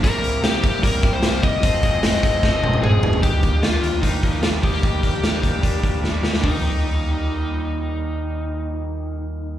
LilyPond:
<<
  \new Staff \with { instrumentName = "Lead electric guitar" } { \time 4/4 \key ees \major \tempo 4 = 150 bes'4 g'4 bes'8. c''8. ees''8~ | ees''2. aes'4 | g'4 f'4 ees'4 f'8 g'8~ | g'2. r4 |
ees'1~ | ees'1 | }
  \new Staff \with { instrumentName = "Overdriven electric guitar" } { \time 4/4 \key ees \major <c g bes e' g'>8. <bes e' g'>8. <g bes e' g'>8 <c g bes e' g'>4 <g bes e' g'>8 <g bes e' g'>8 | <f c' ees' aes'>8. <c' ees' aes'>8. <f c' ees' aes'>8 <f c' ees' aes'>4 <f c' ees' aes'>8 <f c' ees' aes'>8 | <g bes d' g'>8. <ees g bes d' g'>8 <ees g bes d' g'>8. <g bes d' g'>8 <g bes d' g'>8. <ees g bes d' g'>8. | <g bes d' g'>8. <ees g bes d' g'>8 <ees g bes d' g'>8. <g bes d' g'>8 <g bes d' g'>8. <ees g bes d' g'>8. |
<ees g bes g'>1~ | <ees g bes g'>1 | }
  \new Staff \with { instrumentName = "Clean electric guitar" } { \time 4/4 \key ees \major <c e'>8 bes8 e'8 bes8 g8 e'8 bes8 g8 | <f, c'>8 aes8 c'8 aes8 c8 c'8 aes8 ees8 | ees8 bes8 g8 bes8 c'16 r16 bes8 g8 aes16 bes16 | ees8 bes8 g8 bes8 d'8 bes8 g8 bes8 |
<ees g bes>1~ | <ees g bes>1 | }
  \new Staff \with { instrumentName = "Fingered electric bass" } { \clef bass \time 4/4 \key ees \major c,8 c,8 c,8 c,8 c,8 c,8 c,8 c,8 | f,,8 f,,8 f,,8 f,,8 f,,8 f,,8 f,,8 f,,8 | ees,8 ees,8 ees,8 ees,8 ees,8 ees,8 ees,8 ees,8 | ees,8 ees,8 ees,8 ees,8 ees,8 ees,8 ees,8 ees,8 |
ees,1~ | ees,1 | }
  \new DrumStaff \with { instrumentName = "Drums" } \drummode { \time 4/4 <hh bd>8 hh8 <hh sn>8 <hh bd>8 <hh bd>8 <hh bd>8 <hh sn>8 <hh bd>8 | <hh bd>8 <hh bd>8 <hh sn>8 <hh bd>8 <bd sn>8 tommh16 tommh16 toml8 tomfh16 tomfh16 | <hh bd>8 <hh bd>8 <hh sn>8 hh8 <hh bd>8 <hh bd>8 <hh sn>8 <hho bd>8 | <hh bd>8 <hh bd>8 <hh sn>8 <hh bd>8 <hh bd>8 <hh bd>8 sn8 sn16 sn16 |
<hho bd tomfh>4 r4 r4 r4 | r4 r4 r4 r4 | }
>>